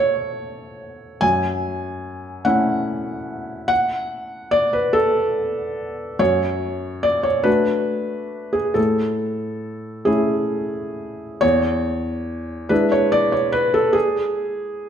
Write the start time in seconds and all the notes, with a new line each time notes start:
Already playing: A3 C#4 E4 A4 C#5
1.21 F#2 G#5
2.45 A3 C#4 E4 F#5
3.68 F#5
4.51 D5
4.73 B4
4.93 A4
6.19 F#2 C#5
7.03 D5
7.23 C#5
7.44 A3 D4 F#4 B4
8.53 G#4
8.74 A2 A4
10.05 A3 C#4 E4 G#4
11.41 E2 C#5
12.69 G#3 D4 E4 B4
12.92 C#5
13.12 D5
13.32 C#5
13.52 B4
13.74 A4
13.93 G#4